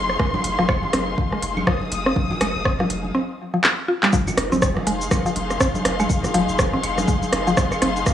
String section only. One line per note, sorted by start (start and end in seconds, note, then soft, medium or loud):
0.00 3.15 D#4 medium
0.00 3.15 G#4 medium
0.00 3.15 F5 medium
0.00 1.71 C6 medium
1.68 3.18 D#6 medium
4.13 8.14 D#4 medium
4.56 8.14 G#4 medium
4.78 8.14 F5 medium
4.89 8.14 C6 medium